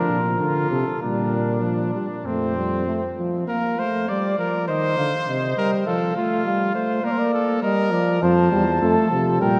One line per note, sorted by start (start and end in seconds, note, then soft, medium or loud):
0.00 0.73 F3 medium
0.00 0.18 D4 medium
0.00 0.69 A#4 medium
0.10 0.39 A#2 medium
0.40 0.70 D3 medium
0.40 0.98 F4 medium
0.71 0.85 C3 medium
0.71 1.01 A4 medium
1.02 1.95 A#2 medium
1.02 1.65 G3 medium
1.02 2.27 D4 medium
1.02 1.95 A#4 medium
1.63 1.94 F3 medium
1.94 2.08 G3 medium
2.25 3.14 F2 medium
2.25 2.56 A3 medium
2.25 3.18 C4 medium
2.25 3.14 C5 medium
2.56 2.86 G3 medium
2.87 3.01 A3 medium
3.18 3.47 F3 medium
3.48 3.76 A#3 medium
3.48 3.81 A#4 medium
3.48 4.05 F5 medium
3.78 4.08 A3 medium
3.78 4.11 C5 medium
4.08 4.38 G3 medium
4.08 4.67 D5 medium
4.08 4.39 D5 medium
4.38 4.70 F3 medium
4.38 4.68 A#4 medium
4.68 4.97 D#3 medium
4.68 5.56 C5 loud
4.68 4.97 D#5 medium
4.98 5.11 D3 medium
4.98 5.27 F5 medium
5.28 5.56 C3 medium
5.28 5.88 D#5 medium
5.57 5.86 G3 medium
5.57 5.71 A#4 medium
5.87 6.15 F3 medium
5.87 6.16 A4 medium
5.87 6.46 F5 medium
6.16 6.45 A3 medium
6.16 6.74 F4 medium
6.45 6.76 G3 medium
6.45 7.03 F5 medium
6.74 7.03 A3 medium
6.74 7.06 C5 medium
7.04 7.62 A#3 medium
7.04 7.33 A#4 medium
7.04 7.12 D5 medium
7.11 7.20 C5 medium
7.18 7.62 D5 medium
7.34 7.62 A4 medium
7.62 7.93 G3 medium
7.62 8.21 A#4 medium
7.62 7.92 D#5 medium
7.92 8.21 F3 medium
7.92 8.23 D5 medium
8.22 8.50 F2 medium
8.22 8.51 F3 medium
8.22 8.81 C5 medium
8.22 9.41 A5 medium
8.52 8.81 E2 medium
8.52 8.66 G3 medium
8.82 8.95 F2 medium
8.82 9.11 A3 medium
8.82 9.40 A4 medium
9.11 9.41 C3 medium
9.11 9.41 F3 medium
9.40 9.60 A#2 medium
9.40 9.60 G3 medium
9.40 9.60 A#4 medium
9.40 9.60 G5 medium